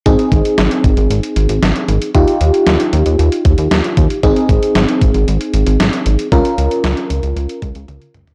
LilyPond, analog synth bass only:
\new Staff \with { instrumentName = "Analog synth bass" } { \clef bass \time 4/4 \key aes \major \tempo 4 = 115 aes,,16 r16 aes,,16 r16 aes,,16 r16 aes,,16 aes,,16 aes,,16 r16 aes,,16 aes,,16 aes,,16 r16 aes,,16 r16 | ees,16 r16 ees,16 r16 ees,16 r16 ees,16 ees,16 ees,16 r16 ees,16 ees,16 ees,16 r16 ees,16 r16 | aes,,16 r16 aes,,16 r16 aes,,16 r16 aes,,16 aes,,16 aes,,16 r16 aes,,16 aes,,16 aes,,16 r16 aes,,16 r16 | des,16 r16 des,16 r16 des,16 r16 des,16 des,16 des,16 r16 des,16 des,16 des,16 r16 des,16 r16 | }